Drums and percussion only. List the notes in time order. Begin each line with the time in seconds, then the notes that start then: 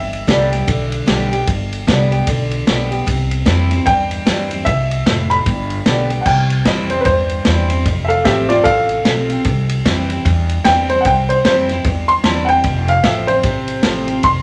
0.13 ride
0.28 kick, snare, ride
0.53 snare, ride
0.68 kick, ride
0.92 ride
1.07 snare, ride
1.33 ride
1.47 kick, ride
1.73 ride
1.88 kick, snare, ride
2.12 ride
2.27 kick, ride
2.51 ride
2.67 snare, ride
2.92 ride
3.07 kick, ride
3.31 ride
3.46 kick, snare, ride
3.71 snare, ride
3.86 kick, ride
4.11 ride
4.27 snare, ride
4.51 ride
4.66 kick, ride
4.91 ride
5.06 snare, ride
5.31 ride
5.46 kick, ride
5.70 ride
5.86 snare, ride
6.10 ride
6.26 kick, crash
6.50 ride
6.65 kick, snare, ride
6.90 ride
7.05 kick, ride
7.29 ride
7.45 snare, ride
7.70 ride
7.86 kick, ride
8.10 ride
8.25 kick, snare, ride
8.50 snare, ride
8.65 kick, ride
8.89 ride
9.05 snare, ride
9.30 ride
9.45 kick, ride
9.69 ride
9.86 kick, snare, ride
10.10 ride
10.25 kick, ride
10.49 ride
10.65 snare, ride
10.89 ride
11.05 kick, ride
11.30 ride
11.45 snare, ride
11.69 snare, ride
11.84 kick, ride
12.09 ride
12.24 snare, ride
12.48 ride
12.64 kick, ride
12.88 ride
13.04 kick, snare, ride
13.28 ride
13.43 kick, ride
13.68 ride
13.83 snare, ride
14.08 ride
14.23 kick, ride